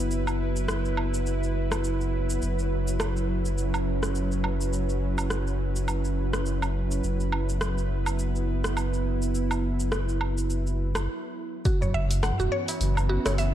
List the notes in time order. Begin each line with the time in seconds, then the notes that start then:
Already playing: F#1 F#3 B3 E4 B4
0.11 shaker
0.27 low woodblock, shaker
0.56 shaker
0.68 cross-stick, shaker
0.85 shaker
0.97 low woodblock
1.14 shaker
1.26 shaker
1.43 shaker
1.72 cross-stick, low woodblock, shaker
1.84 shaker
2.01 shaker
2.30 shaker
2.42 F#1 C#4, shaker
2.59 shaker
2.88 shaker
3.00 cross-stick, low woodblock, shaker
3.17 shaker
3.45 shaker
3.58 shaker
3.74 low woodblock, shaker
4.03 cross-stick, shaker
4.15 shaker
4.32 shaker
4.44 low woodblock
4.61 shaker
4.73 shaker
4.89 shaker
5.18 low woodblock, shaker
5.30 cross-stick, shaker
5.47 shaker
5.76 shaker
5.88 low woodblock, shaker
6.05 shaker
6.33 cross-stick, shaker
6.46 shaker
6.62 low woodblock, shaker
6.91 shaker
7.03 F#1 B3, shaker
7.20 shaker
7.32 low woodblock
7.49 shaker
7.61 cross-stick, shaker
7.78 shaker
8.06 low woodblock, shaker
8.19 shaker
8.36 shaker
8.64 cross-stick, shaker
8.77 low woodblock, shaker
8.94 shaker
9.22 shaker
9.35 shaker
9.51 low woodblock, shaker
9.80 shaker
9.92 cross-stick, shaker
10.09 shaker
10.21 low woodblock
10.38 shaker
10.50 shaker
10.67 shaker
10.95 cross-stick, low woodblock, shaker
11.65 E3 B3 C#4 F#4, kick, open hi-hat, shaker
11.81 C#5, tabla tin, tabla ge, shaker
11.94 F#1 E5
12.11 open hi-hat, tabla tin, shaker
12.23 F#5, cross-stick, open hi-hat, tabla ge, low woodblock, shaker
12.39 E1 F#4, shaker
12.52 C#5
12.68 open hi-hat, tabla na, shaker
12.80 F#1, open hi-hat, shaker
12.97 low woodblock, shaker
13.09 F#4, tabla na
13.25 F#1 C#5, cross-stick, open hi-hat, tabla na, tabla tin, shaker
13.38 E5, open hi-hat, shaker